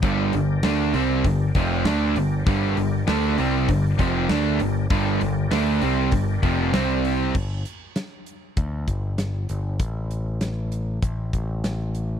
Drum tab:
CC |--------|--------|--------|x-------|
HH |oooooooo|oooooooo|oooooooo|-xxxxxxx|
SD |--o---o-|--o---o-|--o---o-|--o---o-|
BD |o---oo--|o---oo--|o---oo--|o---oo--|

CC |--------|
HH |xxxxxxxx|
SD |--o---o-|
BD |o---oo--|